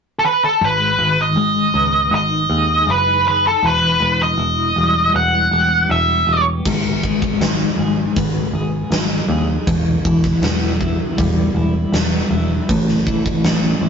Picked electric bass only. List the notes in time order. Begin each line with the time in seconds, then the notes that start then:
0.61 G#1
0.99 G#1
1.36 G#1
1.74 C#2
2.11 G#1
2.50 D#2
2.87 F#1
3.63 E1
4.00 E1
4.38 E1
4.76 E1
5.14 E1
5.51 E1
5.89 E1
6.27 E1
6.66 G#1
7.41 G#1
7.78 G#1
8.16 G#1
8.53 G#1
8.91 G#1
9.29 D#2
9.67 E1
10.05 E1
10.42 E1
11.18 E1
11.55 E1
11.92 E1
12.31 E1
12.69 A1
13.44 A1
13.81 A1